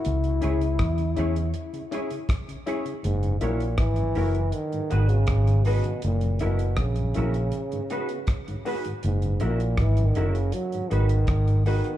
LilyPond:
<<
  \new Staff \with { instrumentName = "Upright piano" } { \time 4/4 \key fis \mixolydian \tempo 4 = 80 r8 <cis' e' gis'>16 r8. <cis' e' gis'>16 r8 <e' gis'>16 <cis' e' gis'>16 r8. <cis' e' gis'>16 <e' gis'>16 | r8 <e' fis' ais'>16 r8. <e' fis' ais'>16 r8 <gis' b'>16 <fis' gis' b'>16 r8. <fis' gis' b'>16 r16 | r8 <e' fis' ais'>16 r8. <e' fis' ais'>16 r8 <gis' b'>16 <fis' gis' b'>16 r8. <fis' gis' b'>16 r16 | r8 <e' fis' ais'>16 r8. <e' fis' ais'>16 r8 <gis' b'>16 <fis' gis' b'>16 r8. <fis' gis' b'>16 r16 | }
  \new Staff \with { instrumentName = "Clean electric guitar" } { \time 4/4 \key fis \mixolydian r8 <e' gis' cis''>16 r8. <e' gis' cis''>16 r8. <e' gis' cis''>16 r8. <e' gis' cis''>16 r16 | r8 <e' ais' cis''>16 r8. <e' ais' cis''>16 r8. <dis' fis' b'>16 r8. <dis' fis' b'>16 r16 | r8 <cis' e' ais'>16 r8. <cis' e' ais'>16 r8. <dis' fis' b'>16 r8. <dis' fis' b'>16 r16 | r8 <cis' e' ais'>16 r8. <cis' e' ais'>16 r8. <dis' fis' b'>16 r8. <dis' fis' b'>16 r16 | }
  \new Staff \with { instrumentName = "Tonewheel organ" } { \clef bass \time 4/4 \key fis \mixolydian r16 cis16 <gis cis' e'>16 cis16 r16 cis16 <gis cis' e'>16 cis16 r16 cis16 <gis cis' e'>16 cis16 r16 cis16 <gis cis' e'>16 cis16 | r16 <fis, cis>16 <fis ais e'>16 r8 <fis, cis>16 <fis ais e'>16 r8 <gis, dis>16 <gis b fis'>16 <b fis'>16 r16 <gis, dis>16 <gis b fis'>16 <gis, dis>16 | r16 <fis, cis>16 <fis ais e'>16 r8 <fis, cis>16 <fis ais e'>16 r8 <gis, dis>16 <gis b fis'>16 <b fis'>16 r16 <gis, dis>16 <gis b fis'>16 <gis, dis>16 | r16 <fis, cis>16 <fis ais e'>16 r8 <fis, cis>16 <fis ais e'>16 r8 <gis, dis>16 <gis b fis'>16 <b fis'>16 r16 <gis, dis>16 <gis b fis'>16 <b fis'>16 | }
  \new Staff \with { instrumentName = "Trombone" } { \clef bass \time 4/4 \key fis \mixolydian e'2. r4 | gis,8 ais,8 e4 dis8. cis8. b,8 | ais,8 b,8 cis2~ cis8 r8 | gis,8 ais,8 \tuplet 3/2 { e8 dis8 cis8 } fis8 dis4 dis8 | }
  \new Staff \with { instrumentName = "Fingered electric bass" } { \clef bass \time 4/4 \key fis \mixolydian cis,8 cis,8 e,8 e,8 r2 | fis,,8 ais,,8 gis,,8 fis,,8 r8 gis,,8 gis,,8. r16 | fis,,8 fis,,8 ais,,8 ais,,8 r2 | fis,,8 ais,,8 gis,,8 fis,,8 r8 gis,,8 gis,,8. r16 | }
  \new DrumStaff \with { instrumentName = "Drums" } \drummode { \time 4/4 hh16 hh16 hh16 hh16 <hh bd ss>16 hh16 hh16 hh16 hh16 hh16 hh16 hh16 <hh bd ss>16 hh16 hh16 hh16 | hh16 hh16 hh16 hh16 <hh bd ss>16 hh16 hho16 hh16 hh16 hh16 hh16 hh16 <hh bd ss>16 hh16 hho16 hh16 | hh16 hh16 hh16 hh16 <hh bd ss>16 hh16 hh16 hh16 hh16 hh16 hh16 hh16 <hh bd ss>16 hh16 hho16 hh16 | hh16 hh16 hh16 hh16 <hh bd ss>16 hh16 hh16 hh16 hh16 hh16 hh16 hh16 <hh bd ss>16 hh16 hho16 hh16 | }
>>